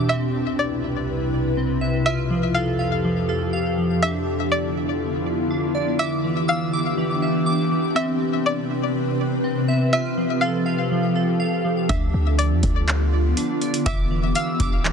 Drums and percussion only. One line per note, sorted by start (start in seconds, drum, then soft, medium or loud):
11.89 kick loud
11.89 closed hi-hat medium
12.39 closed hi-hat medium
12.63 kick medium
12.63 closed hi-hat medium
12.89 clap loud
13.37 closed hi-hat medium
13.61 closed hi-hat soft
13.74 closed hi-hat medium
13.86 kick loud
13.86 closed hi-hat medium
14.35 closed hi-hat medium
14.60 kick medium
14.60 closed hi-hat medium
14.85 clap loud